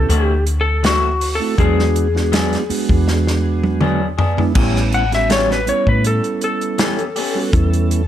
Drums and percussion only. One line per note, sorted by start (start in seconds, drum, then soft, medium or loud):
0.10 closed hi-hat medium
0.46 closed hi-hat medium
0.84 snare loud
0.84 closed hi-hat medium
1.21 open hi-hat medium
1.58 kick loud
1.58 closed hi-hat medium
1.79 snare soft
1.96 closed hi-hat medium
2.16 snare soft
2.33 snare loud
2.33 closed hi-hat medium
2.53 snare soft
2.53 closed hi-hat soft
2.70 open hi-hat medium
2.89 kick medium
3.08 snare medium
3.27 snare medium
3.63 high tom medium
3.81 mid tom medium
4.19 floor tom medium
4.38 floor tom medium
4.55 kick loud
4.55 crash loud
4.76 snare soft
4.92 closed hi-hat medium
5.12 snare soft
5.12 closed hi-hat soft
5.30 snare loud
5.30 closed hi-hat medium
5.51 snare soft
5.67 closed hi-hat medium
5.87 kick medium
6.04 closed hi-hat medium
6.24 closed hi-hat soft
6.41 closed hi-hat medium
6.61 closed hi-hat soft
6.78 snare loud
6.78 closed hi-hat medium
6.99 closed hi-hat soft
7.16 open hi-hat medium
7.53 kick loud
7.53 closed hi-hat medium
7.73 closed hi-hat soft
7.91 closed hi-hat medium